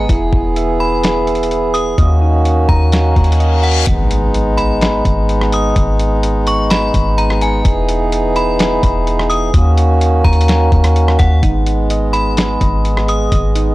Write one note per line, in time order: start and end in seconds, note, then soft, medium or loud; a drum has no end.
0.00 1.94 B3 medium
0.09 0.32 E1 loud
0.09 1.96 E3 medium
0.09 1.51 E4 medium
0.09 1.96 G#4 loud
0.09 kick loud
0.09 closed hi-hat medium
0.33 1.94 E1 loud
0.33 kick loud
0.56 1.26 E5 medium
0.56 closed hi-hat medium
0.80 1.71 B5 medium
1.04 1.73 G#4 medium
1.04 snare loud
1.04 closed hi-hat medium
1.27 1.98 E5 medium
1.27 closed hi-hat medium
1.35 closed hi-hat medium
1.43 closed hi-hat medium
1.51 closed hi-hat medium
1.74 1.98 G#4 medium
1.74 1.97 D#6 medium
1.74 closed hi-hat medium
1.98 2.66 D#2 loud
1.98 3.85 D#3 medium
1.98 3.85 A#3 medium
1.98 3.85 C#4 medium
1.98 3.85 F#4 medium
1.98 3.39 D#5 medium
1.98 kick loud
1.98 closed hi-hat medium
2.22 3.63 D#4 medium
2.45 closed hi-hat medium
2.69 3.14 D#2 loud
2.69 3.59 A#5 medium
2.69 kick medium
2.92 snare loud
2.92 closed hi-hat medium
2.92 reverse cymbal medium
3.16 3.84 D#2 loud
3.16 3.87 F#4 medium
3.16 kick medium
3.16 closed hi-hat soft
3.24 closed hi-hat medium
3.32 closed hi-hat medium
3.40 3.87 D#5 medium
3.40 closed hi-hat medium
3.63 3.86 F#5 medium
3.63 closed hi-hat medium
3.71 closed hi-hat medium
3.79 closed hi-hat medium
3.87 5.01 G#1 loud
3.87 7.61 G#3 medium
3.87 9.50 B3 medium
3.87 9.50 D#4 medium
3.87 kick loud
3.87 closed hi-hat medium
3.87 impact medium
4.11 closed hi-hat medium
4.34 closed hi-hat medium
4.57 5.48 B5 medium
4.57 closed hi-hat medium
4.81 snare loud
4.81 closed hi-hat medium
5.05 5.73 G#1 loud
5.05 kick medium
5.05 closed hi-hat medium
5.29 closed hi-hat medium
5.41 cross-stick medium
5.52 5.76 D#6 medium
5.52 closed hi-hat medium
5.76 6.90 G#1 loud
5.76 kick loud
5.76 closed hi-hat medium
5.99 closed hi-hat medium
6.23 closed hi-hat medium
6.47 6.70 C#6 medium
6.47 closed hi-hat medium
6.70 7.15 B5 loud
6.70 snare loud
6.70 closed hi-hat medium
6.94 7.62 G#1 loud
6.94 kick medium
6.94 closed hi-hat medium
7.18 7.40 A#5 medium
7.18 closed hi-hat medium
7.30 cross-stick medium
7.41 7.64 G#5 medium
7.41 closed hi-hat medium
7.65 8.79 E1 loud
7.65 9.52 E3 medium
7.65 9.52 G#4 medium
7.65 kick loud
7.65 closed hi-hat medium
7.89 closed hi-hat medium
8.12 closed hi-hat medium
8.36 9.27 B5 medium
8.36 closed hi-hat medium
8.59 snare loud
8.59 closed hi-hat medium
8.83 9.51 E1 loud
8.83 kick medium
8.83 closed hi-hat medium
9.07 closed hi-hat medium
9.19 cross-stick medium
9.30 9.52 D#6 medium
9.30 closed hi-hat medium
9.54 10.22 D#2 loud
9.54 11.41 D#3 medium
9.54 11.41 A#3 medium
9.54 11.41 C#4 medium
9.54 11.41 F#4 medium
9.54 kick loud
9.54 closed hi-hat medium
9.78 closed hi-hat medium
10.01 closed hi-hat medium
10.24 10.70 D#2 loud
10.24 11.15 A#5 medium
10.24 kick loud
10.24 closed hi-hat soft
10.33 closed hi-hat medium
10.41 closed hi-hat medium
10.48 snare loud
10.48 closed hi-hat medium
10.72 11.17 D#2 loud
10.72 kick medium
10.72 closed hi-hat soft
10.84 cross-stick medium
10.84 closed hi-hat medium
10.96 closed hi-hat medium
11.08 cross-stick medium
11.19 11.42 D#2 loud
11.19 11.42 F#5 medium
11.19 kick loud
11.19 closed hi-hat medium
11.43 12.57 G#1 loud
11.43 13.75 G#3 medium
11.43 13.75 B3 medium
11.43 12.85 D#4 loud
11.43 kick loud
11.43 closed hi-hat medium
11.66 closed hi-hat medium
11.90 12.59 D#5 medium
11.90 closed hi-hat medium
12.13 13.04 B5 medium
12.13 closed hi-hat medium
12.37 13.06 G#4 medium
12.37 snare loud
12.37 closed hi-hat medium
12.60 13.29 G#1 loud
12.60 13.30 D#5 medium
12.60 kick medium
12.60 closed hi-hat medium
12.85 closed hi-hat medium
12.97 cross-stick loud
13.07 13.75 G#4 medium
13.07 13.31 D#6 medium
13.07 closed hi-hat medium
13.31 13.75 G#1 loud
13.31 13.75 D#5 medium
13.31 kick loud
13.31 closed hi-hat medium
13.55 13.75 D#4 medium
13.55 closed hi-hat medium